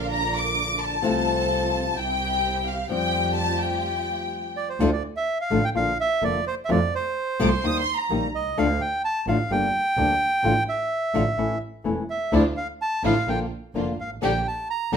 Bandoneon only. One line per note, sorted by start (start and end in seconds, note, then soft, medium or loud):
4.57 4.69 D5 medium
4.69 4.91 C5 medium
4.92 5.03 D5 medium
5.17 5.38 E5 medium
5.41 5.65 F5 medium
5.64 5.70 G5 loud
5.76 5.98 F5 loud
6.00 6.24 E5 loud
6.24 6.45 D5 medium
6.47 6.55 C5 loud
6.65 6.70 E5 medium
6.71 6.94 D5 medium
6.95 7.84 C5 medium
8.35 8.58 D#5 loud
8.59 8.82 F5 loud
8.81 9.02 G5 loud
9.05 9.26 A5 loud
9.28 9.51 F5 loud
9.52 10.63 G5 loud
10.69 11.58 E5 medium
12.10 12.34 E5 medium
12.34 12.45 D5 medium
12.57 12.67 F5 medium
12.82 13.03 A5 loud
13.06 13.29 F5 loud
13.29 13.39 G5 medium
14.00 14.10 F5 medium
14.24 14.47 G5 medium
14.47 14.68 A5 medium
14.70 14.92 A#5 loud
14.93 14.97 A#5 loud